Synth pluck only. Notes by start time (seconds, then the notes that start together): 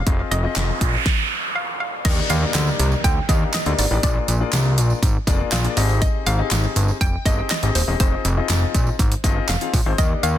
Already playing: F5
0.31 D#5
1.55 F5
1.80 F5
2.05 D#5
2.30 F5
3.04 G5
3.29 D#5
3.54 D#5
3.79 D5
4.03 D5
5.52 F5
6.02 D#5
6.26 F5
7.01 G5
7.26 D#5
7.50 D#5
7.75 C5
8.00 C5
9.49 F5
9.98 D#5
10.23 F5